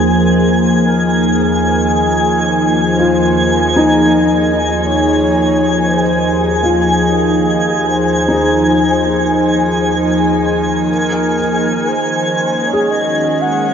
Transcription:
Already playing: D#2 F3 A#3 D#4 G#4 C5 G#5 G#6
0.87 A#4
1.87 G#4
2.87 C5
2.99 F4
3.76 D#4
3.85 D#5
4.87 C#5
5.87 C5
6.63 F4
6.86 G#4
7.87 C5
8.28 D#4
8.34 G#4
8.88 C5
10.88 D#3 A#4
11.68 G#3
11.89 C5
12.00 F#4
12.15 C#4
12.67 C#5
12.73 G#4
12.90 D#5
13.41 F#5

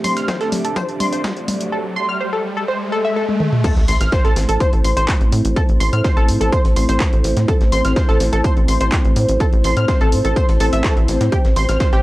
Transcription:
Already playing: A3 C4 D4 G4 C5 D5 E5, riser
0.04 C6, open hi-hat, mid tom, tambourine
0.17 F6, snare, closed hi-hat
0.28 C5, kick, snare, closed hi-hat, mid tom, tambourine
0.41 A4, snare, closed hi-hat
0.52 snare, open hi-hat, mid tom, tambourine
0.65 A4, closed hi-hat
0.76 C5, kick, closed hi-hat, mid tom, tambourine
0.89 closed hi-hat
1.00 C6, open hi-hat, mid tom, tambourine
1.13 C5, closed hi-hat
1.24 kick, snare, closed hi-hat, mid tom, tambourine
1.37 closed hi-hat
1.48 open hi-hat, mid tom, tambourine
1.61 closed hi-hat
1.72 A4
1.96 C6
2.09 F6
2.20 C5
2.33 A4
2.57 A4
2.68 C5, swell
2.92 A4
3.05 E5
3.16 A4
3.29 high tom
3.40 mid tom
3.53 mid tom
3.64 A3 C4 E4 A4 C5 A5, kick, closed hi-hat, crash, tambourine, sub drop
3.77 A1, snare, closed hi-hat
3.88 A1 C6, open hi-hat, tambourine
4.01 A1 C5 F6, snare, closed hi-hat
4.12 C5 C6, kick, snare, closed hi-hat, tambourine
4.25 A1 A4 A5, snare, closed hi-hat
4.36 A1, snare, open hi-hat, tambourine
4.49 A1 A4 A5, closed hi-hat
4.60 C5 C6, kick, closed hi-hat, tambourine
4.73 A1, closed hi-hat
4.84 A1 C6, open hi-hat, tambourine
4.97 A1 C5 C6, closed hi-hat
5.08 kick, snare, clap, closed hi-hat, tambourine
5.21 A1, closed hi-hat
5.32 A2, open hi-hat, tambourine
5.45 A1, closed hi-hat
5.56 A4 A5, kick, closed hi-hat, tambourine
5.69 A1, closed hi-hat
5.80 A1 C6, open hi-hat, tambourine
5.93 A2 F6, closed hi-hat
6.04 C5 C6, kick, snare, closed hi-hat, tambourine
6.17 A1 A4 A5, closed hi-hat
6.28 A2, open hi-hat, tambourine
6.41 A1 A4 A5, closed hi-hat
6.52 C5 C6, kick, closed hi-hat, tambourine
6.65 A1, closed hi-hat
6.76 A1 C6, open hi-hat, tambourine
6.89 A1 C5 C6, closed hi-hat
7.00 kick, snare, clap, closed hi-hat, tambourine
7.13 A1, closed hi-hat
7.24 A1, snare, open hi-hat, tambourine
7.37 A2, snare, closed hi-hat
7.48 A4 A5, kick, closed hi-hat, tambourine
7.61 A1, snare, closed hi-hat
7.72 A1 C6, open hi-hat, tambourine
7.85 A1 F6, snare, closed hi-hat
7.96 C5 C6, kick, snare, closed hi-hat, tambourine
8.09 A1 A4 A5, snare, closed hi-hat
8.20 A1, snare, open hi-hat, tambourine
8.33 A1 A4 A5, closed hi-hat
8.44 C5 C6, kick, closed hi-hat, tambourine
8.57 A1, closed hi-hat
8.68 A1 C6, open hi-hat, tambourine
8.81 A1 C5 C6, closed hi-hat
8.92 kick, snare, clap, closed hi-hat, tambourine
9.05 A1, closed hi-hat
9.16 A2, open hi-hat, tambourine
9.29 A1, closed hi-hat
9.40 A4 A5, kick, closed hi-hat, tambourine
9.53 A1, closed hi-hat
9.64 A1 C6, open hi-hat, tambourine
9.77 A2 F6, closed hi-hat
9.88 C5 C6, kick, snare, closed hi-hat, tambourine
10.01 A1 A4 A5, closed hi-hat
10.12 A2, open hi-hat, tambourine
10.25 A1 A4 A5, closed hi-hat
10.36 C5 C6, kick, closed hi-hat, tambourine
10.49 A1, closed hi-hat
10.60 A1 A4 A5, open hi-hat, tambourine
10.73 A1 E5 E6, closed hi-hat
10.84 A4 A5, kick, snare, clap, closed hi-hat, tambourine
10.97 A1, closed hi-hat
11.08 A1, snare, open hi-hat, tambourine
11.21 A2, snare, closed hi-hat
11.32 G3 F4 G4 G5, kick, closed hi-hat, tambourine
11.45 A1, snare, closed hi-hat
11.56 A1 C6, open hi-hat, tambourine
11.69 A1 F6, snare, closed hi-hat
11.80 C5 C6, kick, snare, closed hi-hat, tambourine
11.93 A1 G4 G5, snare, closed hi-hat

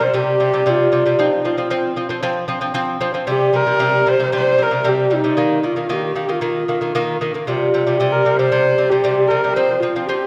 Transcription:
0.00 C3 G3 C5
0.14 C3 G3 G4
0.40 C3 G3
0.53 C3 G3
0.66 C3 G3 F4
0.92 C3 G3
1.06 C3 G3
1.19 F3 C4 D#4
1.45 F3 C4 F4
1.58 F3 C4
1.70 F3 C4
1.96 F3 C4
2.09 F3 C4
2.23 F3 C4
2.48 F3 C4
2.61 F3 C4
2.74 F3 C4
3.01 F3 C4
3.14 F3 C4
3.27 C3 G3 G4
3.53 C3 G3 A#4
3.66 C3 G3
3.79 C3 G3
4.06 C3 G3 C5
4.20 C3 G3
4.32 C3 G3 C5
4.58 C3 G3 A#4
4.71 C3 G3
4.84 C3 G3
4.88 G4
5.10 C3 G3 D#4
5.24 C3 G3
5.37 D#3 A#3
5.63 D#3 A#3 F4
5.76 D#3 A#3
5.89 D#3 A#3 G4
6.15 D#3 A#3
6.29 D#3 A#3 F4
6.41 D#3 A#3
6.68 D#3 A#3
6.81 D#3 A#3
6.95 D#3 A#3
7.21 D#3 A#3
7.34 D#3 A#3
7.46 C3 G3 F4
7.74 C3 G3
7.87 C3 G3
7.98 C3 G3 G4
8.12 A#4
8.25 C3 G3
8.37 C3 G3 C5
8.52 C3 G3
8.78 C3 G3
8.89 C3 G3 G4
9.04 C3 G3
9.27 C3 G3 A#4
9.44 C3 G3
9.54 F3 C4 C5
9.80 F3 C4 F4
9.96 F3 C4
10.06 F3 C4 G4

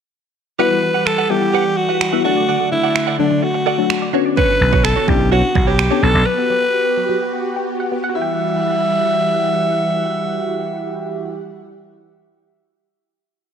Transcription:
0.59 E3 G3 B3 E4 F#4 G4 B4 F#5
0.71 G3
0.83 E3
0.94 G4 B4 F#5
1.06 A4, finger snap, muted clean electric guitar stroke
1.18 G4 B4 F#5
1.30 E3 G3 B3 E4 G4 A4, muted clean electric guitar stroke
1.42 E3, muted clean electric guitar stroke
1.54 G4 B4 F#5
1.65 muted clean electric guitar stroke
1.77 F#4, muted clean electric guitar stroke
1.89 F#4 G4 B4 F#5
2.01 finger snap
2.13 G3 B3 E4 F#4 G4 B4 E5 F#5
2.24 D3 F#3 A3 D4 F#4 A4 D5 F#5
2.36 D5, muted clean electric guitar stroke
2.48 D3 A4 D5 F#5
2.60 A3
2.72 D3 E4, muted clean electric guitar stroke
2.83 A4 D5 F#5
2.95 finger snap, muted clean electric guitar stroke
3.07 A4 D5 F#5
3.19 D3 F#3 A3 D4 A4, muted clean electric guitar stroke
3.31 D3, muted clean electric guitar stroke
3.42 F#4, muted clean electric guitar stroke
3.54 muted clean electric guitar stroke
3.66 A4 D5 F#5
3.78 F#3 A3 D4 F#4, muted clean electric guitar stroke
3.90 finger snap
4.02 D5, muted clean electric guitar stroke
4.13 D3 B3 C#4 D4 F#4 C#5
4.25 D5, muted clean electric guitar stroke
4.37 D3 D4 F#4 B4 C#5, kick
4.49 C#4
4.61 B1 D3, muted clean electric guitar stroke
4.72 D4 F#4 C#5, kick
4.85 A4, finger snap
4.96 D4 F#4 C#5
5.08 B1 D3 B3 C#4 D4 E4 G4, kick
5.20 D3, muted clean electric guitar stroke
5.32 D4 F#4 C#5
5.43 muted clean electric guitar stroke
5.55 B1, muted clean electric guitar stroke, kick
5.67 D4 F#4 G4 B4 C#5
5.79 finger snap
5.91 B3 C#4 D4 F#4 A4 C#5 D5
6.02 B1 C#4 D4 F#4 A4 C#5
6.14 B1 D5, muted clean electric guitar stroke
6.26 F#3 F#4 G4 B4
6.38 B3
6.50 F#3
6.97 F#3
7.09 F#3
7.56 G4
7.80 F#5
7.92 B3
8.04 F#5
8.09 F#4
8.15 E3 G3 E4 E5 F#5
8.21 G4

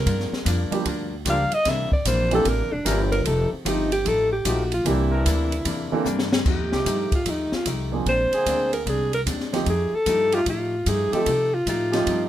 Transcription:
Already playing: A#4
0.05 G2 F3 A#3 D4, kick, ride
0.20 snare
0.32 muted upright bass stroke, snare
0.45 F2 G2 F3 A#3 D4, kick, hi-hat pedal, ride
0.71 F3 G3 A#3 D4 G4, muted upright bass stroke, ride
0.85 D2 G2 F3 A#3 D4, kick, ride
1.25 C#2 G2 F3 A#3 D4 G4, kick, hi-hat pedal, ride
1.30 F5
1.51 D#5, muted upright bass stroke, ride
1.65 C2 C3 E3 A#3 D4 E5, kick, snare, ride
1.91 D5, muted upright bass stroke, kick
2.05 A#1 C3 E3 A#3 D4 C5, kick, hi-hat pedal, ride
2.31 E3 A#3 C4 D4 G4, ride
2.35 A4
2.45 A1 C3 E3 A#3 A#4, kick, ride
2.49 D4
2.59 G1
2.72 E1 D4
2.85 G1 C3 E3 A#3 C4 D4 G4 A#4, kick, hi-hat pedal, ride
3.12 A#4, ride
3.24 F1 F3 A3 D#4 G4 A4, kick, ride
3.52 C4, muted upright bass stroke
3.65 G1 F3 A3 C4 D#4 G4, kick, hi-hat pedal, ride
3.92 G4, ride
4.05 A1 F3 A3 D#4 G4 A4, kick, ride
4.33 G4
4.45 A#1 F3 A3 D#4 F#4 G4, kick, hi-hat pedal, ride
4.72 F4, ride
4.85 C2 C3 E3 A#3 C4 D4 E4 G4, kick, ride
5.11 E3 C4 D4 A#4
5.25 D2 C3 E3 A#3 D4, kick, hi-hat pedal, ride
5.52 ride
5.65 E2 C3 E3 A#3 D4, kick, ride
5.92 E3 A#3 C4 D4 A4, muted upright bass stroke
6.05 G2 C3 E3 A#3 D4, hi-hat pedal
6.19 snare
6.33 snare
6.45 F2 F3 A3 D#4 G4, kick, crash
6.50 G4
6.59 D#2
6.72 C2 F3 A3 D#4 G4, snare
6.86 G2 F3 A3 D#4 G4, kick, hi-hat pedal, ride
7.12 F4, muted upright bass stroke, kick, ride
7.26 D#2 F3 A3 D#4 G4, kick, ride
7.30 D#4
7.52 F4, muted upright bass stroke, snare
7.65 C2 F3 A3 D#4 G4, kick, hi-hat pedal, ride
7.92 F3 A#3 C4 D4 G#4
8.06 A#1 A#2 G#3 C4 D4 C5, kick, ride
8.32 D3 A#3 C4 G#4, muted upright bass stroke, ride
8.46 D2 A#2 G#3 C4 D4, kick, hi-hat pedal, ride
8.73 A#4, ride
8.85 C2 A#2 G#3 C4 D4 G#4, kick, ride
9.13 A#4, ride
9.26 D#2 A#2 G#3 C4 D4, kick, hi-hat pedal, ride
9.40 snare
9.53 F3 A3 C4 D#4 G4, snare, ride
9.66 F2 F3 A3 D#4 G4 G#4, kick, ride
9.92 A4, muted upright bass stroke
10.06 G2 F3 A3 D#4 G4, kick, hi-hat pedal, ride
10.32 F3 A3 D#4 F4 G4, ride
10.46 A2 F3 A3 D#4 F4 G4, kick, ride
10.86 G2 F3 A3 D#4 G4 G#4, kick, hi-hat pedal, ride
11.12 F3 A3 C4 D#4 G4 A4, muted upright bass stroke, ride
11.26 C3 F3 A3 D#4, kick, ride
11.30 G4
11.54 F4
11.66 A2 F3 A3 D#4 F4 G4, kick, hi-hat pedal, ride
11.92 F3 A3 C4 D#4 G4, snare, ride
12.07 G2 F3 A3 D#4 G4, kick, ride

